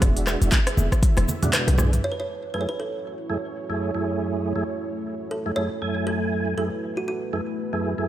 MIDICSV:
0, 0, Header, 1, 6, 480
1, 0, Start_track
1, 0, Key_signature, 3, "minor"
1, 0, Tempo, 504202
1, 17, Time_signature, 4, 2, 24, 8
1, 7695, End_track
2, 0, Start_track
2, 0, Title_t, "Kalimba"
2, 0, Program_c, 0, 108
2, 1465, Note_on_c, 0, 71, 102
2, 1944, Note_on_c, 0, 73, 104
2, 1955, Note_off_c, 0, 71, 0
2, 2013, Note_off_c, 0, 73, 0
2, 2015, Note_on_c, 0, 71, 91
2, 2088, Note_off_c, 0, 71, 0
2, 2091, Note_on_c, 0, 73, 102
2, 2396, Note_off_c, 0, 73, 0
2, 2418, Note_on_c, 0, 71, 89
2, 2482, Note_on_c, 0, 73, 81
2, 2489, Note_off_c, 0, 71, 0
2, 2555, Note_off_c, 0, 73, 0
2, 2559, Note_on_c, 0, 71, 96
2, 2661, Note_off_c, 0, 71, 0
2, 2662, Note_on_c, 0, 69, 75
2, 3581, Note_off_c, 0, 69, 0
2, 5056, Note_on_c, 0, 69, 91
2, 5293, Note_on_c, 0, 73, 106
2, 5304, Note_off_c, 0, 69, 0
2, 5742, Note_off_c, 0, 73, 0
2, 5777, Note_on_c, 0, 69, 101
2, 6249, Note_off_c, 0, 69, 0
2, 6261, Note_on_c, 0, 69, 90
2, 6637, Note_on_c, 0, 66, 73
2, 6650, Note_off_c, 0, 69, 0
2, 6729, Note_off_c, 0, 66, 0
2, 6740, Note_on_c, 0, 66, 83
2, 7421, Note_off_c, 0, 66, 0
2, 7695, End_track
3, 0, Start_track
3, 0, Title_t, "Analog synth pad"
3, 0, Program_c, 1, 89
3, 0, Note_on_c, 1, 59, 78
3, 0, Note_on_c, 1, 64, 77
3, 0, Note_on_c, 1, 68, 76
3, 0, Note_on_c, 1, 76, 94
3, 1898, Note_off_c, 1, 76, 0
3, 1899, Note_off_c, 1, 59, 0
3, 1899, Note_off_c, 1, 68, 0
3, 1901, Note_off_c, 1, 64, 0
3, 1937, Note_on_c, 1, 57, 78
3, 1937, Note_on_c, 1, 64, 71
3, 1937, Note_on_c, 1, 66, 71
3, 1938, Note_on_c, 1, 73, 86
3, 5739, Note_off_c, 1, 73, 0
3, 5775, Note_on_c, 1, 71, 89
3, 7695, Note_off_c, 1, 57, 0
3, 7695, Note_off_c, 1, 64, 0
3, 7695, Note_off_c, 1, 66, 0
3, 7695, Note_off_c, 1, 71, 0
3, 7695, End_track
4, 0, Start_track
4, 0, Title_t, "Tonewheel organ"
4, 0, Program_c, 2, 16
4, 0, Note_on_c, 2, 56, 89
4, 0, Note_on_c, 2, 62, 80
4, 0, Note_on_c, 2, 66, 90
4, 474, Note_off_c, 2, 56, 0
4, 474, Note_off_c, 2, 62, 0
4, 474, Note_off_c, 2, 66, 0
4, 498, Note_on_c, 2, 56, 91
4, 498, Note_on_c, 2, 62, 88
4, 498, Note_on_c, 2, 66, 104
4, 575, Note_off_c, 2, 56, 0
4, 575, Note_off_c, 2, 62, 0
4, 575, Note_off_c, 2, 66, 0
4, 1358, Note_on_c, 2, 56, 80
4, 1358, Note_on_c, 2, 62, 73
4, 1359, Note_on_c, 2, 66, 86
4, 1674, Note_off_c, 2, 56, 0
4, 1674, Note_off_c, 2, 62, 0
4, 1674, Note_off_c, 2, 66, 0
4, 1697, Note_on_c, 2, 56, 80
4, 1698, Note_on_c, 2, 62, 78
4, 1698, Note_on_c, 2, 68, 90
4, 1821, Note_off_c, 2, 56, 0
4, 1822, Note_off_c, 2, 62, 0
4, 1822, Note_off_c, 2, 68, 0
4, 2419, Note_on_c, 2, 42, 68
4, 2419, Note_on_c, 2, 57, 67
4, 2419, Note_on_c, 2, 64, 65
4, 2419, Note_on_c, 2, 68, 77
4, 2542, Note_off_c, 2, 42, 0
4, 2542, Note_off_c, 2, 57, 0
4, 2542, Note_off_c, 2, 64, 0
4, 2542, Note_off_c, 2, 68, 0
4, 3138, Note_on_c, 2, 42, 82
4, 3138, Note_on_c, 2, 57, 70
4, 3138, Note_on_c, 2, 64, 77
4, 3138, Note_on_c, 2, 68, 86
4, 3215, Note_off_c, 2, 42, 0
4, 3215, Note_off_c, 2, 57, 0
4, 3215, Note_off_c, 2, 64, 0
4, 3215, Note_off_c, 2, 68, 0
4, 3519, Note_on_c, 2, 42, 74
4, 3519, Note_on_c, 2, 57, 69
4, 3519, Note_on_c, 2, 68, 87
4, 3520, Note_on_c, 2, 64, 68
4, 3724, Note_off_c, 2, 42, 0
4, 3725, Note_off_c, 2, 57, 0
4, 3725, Note_off_c, 2, 64, 0
4, 3725, Note_off_c, 2, 68, 0
4, 3756, Note_on_c, 2, 64, 73
4, 3757, Note_on_c, 2, 42, 77
4, 3757, Note_on_c, 2, 57, 69
4, 3757, Note_on_c, 2, 68, 83
4, 4313, Note_off_c, 2, 42, 0
4, 4313, Note_off_c, 2, 57, 0
4, 4313, Note_off_c, 2, 64, 0
4, 4313, Note_off_c, 2, 68, 0
4, 4337, Note_on_c, 2, 42, 89
4, 4338, Note_on_c, 2, 57, 84
4, 4338, Note_on_c, 2, 64, 79
4, 4338, Note_on_c, 2, 68, 101
4, 4415, Note_off_c, 2, 42, 0
4, 4415, Note_off_c, 2, 57, 0
4, 4415, Note_off_c, 2, 64, 0
4, 4415, Note_off_c, 2, 68, 0
4, 5197, Note_on_c, 2, 64, 72
4, 5198, Note_on_c, 2, 42, 77
4, 5198, Note_on_c, 2, 57, 74
4, 5198, Note_on_c, 2, 68, 84
4, 5253, Note_off_c, 2, 42, 0
4, 5253, Note_off_c, 2, 57, 0
4, 5253, Note_off_c, 2, 64, 0
4, 5253, Note_off_c, 2, 68, 0
4, 5299, Note_on_c, 2, 57, 73
4, 5299, Note_on_c, 2, 64, 70
4, 5299, Note_on_c, 2, 68, 84
4, 5300, Note_on_c, 2, 42, 80
4, 5422, Note_off_c, 2, 42, 0
4, 5422, Note_off_c, 2, 57, 0
4, 5422, Note_off_c, 2, 64, 0
4, 5422, Note_off_c, 2, 68, 0
4, 5539, Note_on_c, 2, 64, 70
4, 5540, Note_on_c, 2, 42, 72
4, 5540, Note_on_c, 2, 57, 69
4, 5540, Note_on_c, 2, 80, 83
4, 6234, Note_off_c, 2, 42, 0
4, 6234, Note_off_c, 2, 64, 0
4, 6234, Note_off_c, 2, 80, 0
4, 6235, Note_off_c, 2, 57, 0
4, 6258, Note_on_c, 2, 42, 76
4, 6258, Note_on_c, 2, 57, 67
4, 6258, Note_on_c, 2, 64, 67
4, 6258, Note_on_c, 2, 68, 81
4, 6382, Note_off_c, 2, 42, 0
4, 6382, Note_off_c, 2, 57, 0
4, 6382, Note_off_c, 2, 64, 0
4, 6382, Note_off_c, 2, 68, 0
4, 6979, Note_on_c, 2, 57, 76
4, 6979, Note_on_c, 2, 68, 91
4, 6980, Note_on_c, 2, 42, 80
4, 6980, Note_on_c, 2, 64, 78
4, 7056, Note_off_c, 2, 42, 0
4, 7056, Note_off_c, 2, 57, 0
4, 7056, Note_off_c, 2, 64, 0
4, 7056, Note_off_c, 2, 68, 0
4, 7359, Note_on_c, 2, 64, 69
4, 7359, Note_on_c, 2, 68, 87
4, 7360, Note_on_c, 2, 42, 76
4, 7360, Note_on_c, 2, 57, 69
4, 7565, Note_off_c, 2, 42, 0
4, 7565, Note_off_c, 2, 57, 0
4, 7565, Note_off_c, 2, 64, 0
4, 7565, Note_off_c, 2, 68, 0
4, 7599, Note_on_c, 2, 42, 78
4, 7599, Note_on_c, 2, 68, 88
4, 7600, Note_on_c, 2, 57, 71
4, 7600, Note_on_c, 2, 64, 73
4, 7695, Note_off_c, 2, 42, 0
4, 7695, Note_off_c, 2, 57, 0
4, 7695, Note_off_c, 2, 64, 0
4, 7695, Note_off_c, 2, 68, 0
4, 7695, End_track
5, 0, Start_track
5, 0, Title_t, "808-style bass"
5, 0, Program_c, 3, 38
5, 17, Note_on_c, 3, 28, 99
5, 346, Note_off_c, 3, 28, 0
5, 396, Note_on_c, 3, 28, 101
5, 474, Note_off_c, 3, 28, 0
5, 737, Note_on_c, 3, 28, 105
5, 846, Note_off_c, 3, 28, 0
5, 1118, Note_on_c, 3, 28, 83
5, 1195, Note_off_c, 3, 28, 0
5, 1596, Note_on_c, 3, 35, 90
5, 1901, Note_off_c, 3, 35, 0
5, 7695, End_track
6, 0, Start_track
6, 0, Title_t, "Drums"
6, 17, Note_on_c, 9, 36, 112
6, 17, Note_on_c, 9, 37, 87
6, 17, Note_on_c, 9, 42, 67
6, 21, Note_on_c, 9, 64, 98
6, 22, Note_on_c, 9, 82, 38
6, 112, Note_off_c, 9, 36, 0
6, 113, Note_off_c, 9, 37, 0
6, 113, Note_off_c, 9, 42, 0
6, 116, Note_off_c, 9, 64, 0
6, 117, Note_off_c, 9, 82, 0
6, 157, Note_on_c, 9, 42, 50
6, 253, Note_off_c, 9, 42, 0
6, 257, Note_on_c, 9, 37, 80
6, 257, Note_on_c, 9, 39, 53
6, 258, Note_on_c, 9, 61, 63
6, 259, Note_on_c, 9, 60, 83
6, 261, Note_on_c, 9, 82, 86
6, 352, Note_off_c, 9, 37, 0
6, 352, Note_off_c, 9, 39, 0
6, 353, Note_off_c, 9, 61, 0
6, 354, Note_off_c, 9, 60, 0
6, 357, Note_off_c, 9, 82, 0
6, 396, Note_on_c, 9, 42, 35
6, 400, Note_on_c, 9, 82, 51
6, 491, Note_off_c, 9, 42, 0
6, 492, Note_on_c, 9, 61, 87
6, 492, Note_on_c, 9, 63, 62
6, 496, Note_off_c, 9, 82, 0
6, 496, Note_on_c, 9, 39, 100
6, 496, Note_on_c, 9, 42, 66
6, 497, Note_on_c, 9, 36, 108
6, 500, Note_on_c, 9, 82, 40
6, 587, Note_off_c, 9, 63, 0
6, 588, Note_off_c, 9, 61, 0
6, 591, Note_off_c, 9, 39, 0
6, 591, Note_off_c, 9, 42, 0
6, 592, Note_off_c, 9, 36, 0
6, 596, Note_off_c, 9, 82, 0
6, 637, Note_on_c, 9, 37, 98
6, 637, Note_on_c, 9, 42, 51
6, 732, Note_off_c, 9, 37, 0
6, 732, Note_off_c, 9, 42, 0
6, 737, Note_on_c, 9, 63, 94
6, 742, Note_on_c, 9, 82, 85
6, 832, Note_off_c, 9, 63, 0
6, 837, Note_off_c, 9, 82, 0
6, 875, Note_on_c, 9, 61, 56
6, 877, Note_on_c, 9, 36, 57
6, 879, Note_on_c, 9, 37, 77
6, 879, Note_on_c, 9, 42, 33
6, 883, Note_on_c, 9, 82, 52
6, 971, Note_off_c, 9, 61, 0
6, 972, Note_off_c, 9, 36, 0
6, 974, Note_off_c, 9, 37, 0
6, 974, Note_off_c, 9, 42, 0
6, 977, Note_on_c, 9, 36, 120
6, 977, Note_on_c, 9, 42, 70
6, 977, Note_on_c, 9, 48, 63
6, 978, Note_off_c, 9, 82, 0
6, 981, Note_on_c, 9, 82, 39
6, 1072, Note_off_c, 9, 36, 0
6, 1072, Note_off_c, 9, 42, 0
6, 1072, Note_off_c, 9, 48, 0
6, 1076, Note_off_c, 9, 82, 0
6, 1112, Note_on_c, 9, 61, 91
6, 1118, Note_on_c, 9, 37, 89
6, 1118, Note_on_c, 9, 42, 47
6, 1118, Note_on_c, 9, 48, 58
6, 1207, Note_off_c, 9, 61, 0
6, 1213, Note_off_c, 9, 37, 0
6, 1213, Note_off_c, 9, 42, 0
6, 1213, Note_off_c, 9, 48, 0
6, 1222, Note_on_c, 9, 82, 88
6, 1223, Note_on_c, 9, 63, 66
6, 1318, Note_off_c, 9, 63, 0
6, 1318, Note_off_c, 9, 82, 0
6, 1357, Note_on_c, 9, 42, 32
6, 1357, Note_on_c, 9, 47, 65
6, 1359, Note_on_c, 9, 63, 54
6, 1359, Note_on_c, 9, 64, 76
6, 1361, Note_on_c, 9, 82, 51
6, 1452, Note_off_c, 9, 42, 0
6, 1452, Note_off_c, 9, 47, 0
6, 1454, Note_off_c, 9, 63, 0
6, 1454, Note_off_c, 9, 64, 0
6, 1457, Note_off_c, 9, 82, 0
6, 1459, Note_on_c, 9, 37, 91
6, 1459, Note_on_c, 9, 39, 112
6, 1459, Note_on_c, 9, 42, 72
6, 1459, Note_on_c, 9, 47, 87
6, 1463, Note_on_c, 9, 61, 56
6, 1463, Note_on_c, 9, 82, 39
6, 1554, Note_off_c, 9, 37, 0
6, 1554, Note_off_c, 9, 39, 0
6, 1554, Note_off_c, 9, 42, 0
6, 1554, Note_off_c, 9, 47, 0
6, 1558, Note_off_c, 9, 61, 0
6, 1558, Note_off_c, 9, 82, 0
6, 1596, Note_on_c, 9, 60, 88
6, 1599, Note_on_c, 9, 42, 45
6, 1599, Note_on_c, 9, 47, 73
6, 1692, Note_off_c, 9, 60, 0
6, 1692, Note_on_c, 9, 63, 101
6, 1694, Note_off_c, 9, 42, 0
6, 1694, Note_off_c, 9, 47, 0
6, 1697, Note_on_c, 9, 61, 86
6, 1699, Note_on_c, 9, 37, 80
6, 1699, Note_on_c, 9, 45, 96
6, 1703, Note_on_c, 9, 82, 85
6, 1788, Note_off_c, 9, 63, 0
6, 1792, Note_off_c, 9, 61, 0
6, 1794, Note_off_c, 9, 37, 0
6, 1794, Note_off_c, 9, 45, 0
6, 1798, Note_off_c, 9, 82, 0
6, 1838, Note_on_c, 9, 42, 33
6, 1838, Note_on_c, 9, 45, 84
6, 1842, Note_on_c, 9, 82, 48
6, 1933, Note_off_c, 9, 42, 0
6, 1933, Note_off_c, 9, 45, 0
6, 1937, Note_off_c, 9, 82, 0
6, 7695, End_track
0, 0, End_of_file